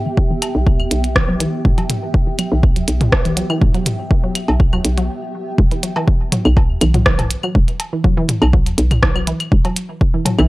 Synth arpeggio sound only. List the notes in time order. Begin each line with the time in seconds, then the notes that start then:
0.06 E3
0.18 F#3
0.30 E3
0.67 F#3
1.16 E3
1.29 F#3
1.40 E3
1.78 F#3
2.27 E3
2.39 F#3
2.52 E3
2.76 F#3
3.25 E3
3.37 F#3
3.50 E3
3.74 F#3
4.24 F#3
4.73 F#3
4.98 F#3
5.71 E3
5.83 F#3
5.96 E3
6.32 F#3
6.81 E3
6.94 F#3
7.06 E3
7.44 F#3
7.93 E3
8.04 F#3
8.17 E3
8.53 F#3
9.03 E3
9.16 F#3
9.27 E3
9.65 F#3
10.14 E3
10.26 F#3
10.39 E3